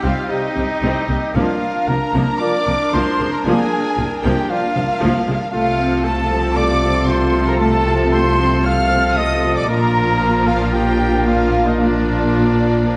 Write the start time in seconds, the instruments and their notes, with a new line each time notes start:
Already playing: clarinet C4, violin section D#4 G4, oboe G4
0.03 double bass section C2, cello section C3, viola section G3 C4, trumpet F4, violin section F5, flute section F5
0.29 trombone section C3 G3, french horn section C4 G4, trumpet D#4, violin section D#5, flute section D#5
0.55 double bass section C2, cello section C3, viola section G3 C4
0.83 double bass section C2, cello section C3, viola section G3 C4
1.08 double bass section C2, cello section C3, viola section G3 A#3
1.35 double bass section C2, cello section C3, viola section F3 A#3, trombone section F3 A#3, french horn section D4 F4, violin section D4 A#4 F5, clarinet D4, trumpet F4, oboe A#4, flute section F5
1.87 double bass section C2, cello section C3, viola section F3 A#3, trumpet A#4, violin section A#5
2.13 double bass section C2, cello section C3, viola section F3 A#3
2.39 trombone section F3 A#3, french horn section D4 F4, trumpet D5, flute section D6, violin section D6
2.67 double bass section C2, cello section C3, viola section F3 A#3
2.92 double bass section C2, cello section C3, viola section F3 A#3, trumpet C5, flute section C6, violin section C6
3.19 double bass section C2, cello section C3, viola section F3 G#3
3.31 trumpet A#4, flute section A#5, violin section A#5
3.44 double bass section C2, cello section C3, viola section F3 A#3, trombone section F3 A#3, french horn section D4 F4, trumpet G#4, violin section G#5, flute section G#5
3.97 double bass section C2, cello section C3, viola section F3 A#3
4.23 double bass section C2, cello section C3, viola section F3 A#3, trumpet G4, flute section G5, violin section G5
4.48 trombone section F3 A#3, french horn section D4 F4, trumpet F4, flute section F5, violin section F5
4.75 double bass section C2, cello section C3, viola section F3 A#3
5.01 double bass section C2, cello section C3, viola section F3 A#3
5.26 double bass section C2, cello section C3, viola section F3 G#3
5.52 double bass section C2, cello section C3, trombone section F3 A3, viola section A3, violin section A3 F4 F5, french horn section C4 F4, trumpet F4, clarinet F4, oboe A4, flute section F5
5.79 viola section F3 C4, violin section C4 A4
6.05 viola section A3, violin section A3 F4 A5, trumpet A4, flute section A5
6.30 viola section F3 C4, violin section C4 A4
6.56 viola section A3, violin section A3 F4 D6, trumpet D5, flute section D6
6.82 viola section F3 C4, violin section C4 A4
7.08 viola section A3, violin section A3 F4 C6, trumpet C5, flute section C6
7.35 viola section F3 C4, violin section C4 A4
7.47 trumpet A#4, flute section A#5, violin section A#5
7.60 violin section A3 F4 A5, viola section A3, trumpet A4, flute section A5
7.86 viola section F3 C4, violin section C4 A4
8.12 violin section A3 F4 C6, viola section A3, trumpet C5, flute section C6
8.38 viola section F3 C4, violin section C4 A4
8.64 violin section A3 F4 F6, viola section A3, trumpet F5, flute section F6
8.90 viola section F3 C4, violin section C4 A4
9.16 violin section A3 F4 D#6, viola section A3, trumpet D#5, flute section D#6
9.43 viola section F3 C4, violin section C4 A4
9.56 trumpet D5, violin section D6, flute section D6
9.68 double bass section A#1, cello section A#2, viola section F3 A#3, trombone section F3 A#3, violin section D4 F4 A#5, french horn section D4 F4, clarinet F4, trumpet A#4, oboe A#4, flute section A#5
10.47 trumpet F4, flute section F5, violin section F5
10.73 trumpet G4, flute section G5, violin section G5
11.26 viola section F3 A#3, violin section D4 F4 F5, trumpet F4, flute section F5
11.67 trumpet D#4, flute section D#5, violin section D#5
11.80 viola section F3 A#3, trumpet D4, violin section D4 F4 D5, flute section D5